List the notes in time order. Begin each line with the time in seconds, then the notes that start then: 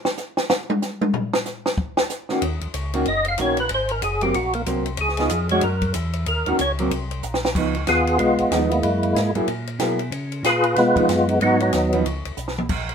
0.05 snare
0.17 snare, hi-hat pedal
0.37 snare
0.50 snare
0.70 high tom
0.82 snare, hi-hat pedal
1.01 high tom
1.14 floor tom
1.33 snare
1.46 snare, hi-hat pedal
1.66 snare
1.78 kick
1.97 snare
2.10 snare, hi-hat pedal
2.29 D#3 A#3 C#4 F#4, snare
2.41 D#2, ride
2.61 D#2, ride
2.74 C#2, hi-hat pedal, ride
2.94 D#3 A#3 C#4 F#4, ride
3.06 F#1 D#5, ride
3.25 F5, ride
3.38 A#1 D#3 A#3 C#4 F#4 C#5, hi-hat pedal, ride
3.57 B4, ride
3.69 G#1, ride
3.74 C5
3.89 A#4, ride
4.02 F#1 G#4, hi-hat pedal, ride
4.21 F#3 A#3 C4 G4, ride
4.34 A#1 F#4, ride
4.53 A#3, ride
4.66 C2 F#3 A#3 C4, hi-hat pedal, ride
4.86 ride
4.97 C#2 G#4, ride
5.09 snare
5.17 B3 D#4 F4, snare, ride
5.30 F2, hi-hat pedal, ride
5.49 G#3 D4 F#4 C#5, ride
5.61 F#2 A#4, ride
5.82 kick, ride
5.94 E2, hi-hat pedal, ride
6.13 ride
6.26 D#2 A#4, ride
6.46 D#2 D#3 A#3 C#4 F#4, ride
6.59 C#2 C#5, hi-hat pedal, ride
6.79 F#3 A#3 C4, ride
6.91 C2, ride
7.11 ride
7.23 A#1, hi-hat pedal
7.34 snare
7.45 snare
7.55 C#2 F3 B3 D#4, kick, crash
7.75 ride
7.87 D#2 B3 F4 G#4, snare, hi-hat pedal, ride
8.07 ride
8.19 B1 G#3 B3 F4, ride
8.38 B1, ride
8.50 D#2 F3 B3 D#4, snare, hi-hat pedal, ride
8.70 G#3 A#3 E4, ride
8.83 F#2, ride
9.03 ride
9.15 G#2, snare, hi-hat pedal, ride
9.35 G#2 F#3 A#3 E4 G#4, ride
9.48 A#2, ride
9.67 ride
9.79 B2 F#3 A#3 E4 G#4, snare, hi-hat pedal, ride
9.99 ride
10.12 C#3, ride
10.32 ride
10.43 A#2 F4 G#4 B4, snare, hi-hat pedal, ride
10.64 ride
10.76 B2 G#3 B3 F4, snare, ride
10.96 B2 F3 G#3 B3 D#4 F4, kick, ride
11.08 F#2, snare, hi-hat pedal, ride
11.29 D#4, ride
11.41 G#2 F#3 B3 D#4 F#4, ride
11.60 F#3 B3 D#4, ride
11.73 D#2, snare, hi-hat pedal, ride
11.93 F3 B3 D#4, ride
12.05 C#2, ride
12.25 C#2, ride
12.37 B1, hi-hat pedal
12.48 snare
12.58 mid tom
12.69 A#1, kick, crash
12.89 ride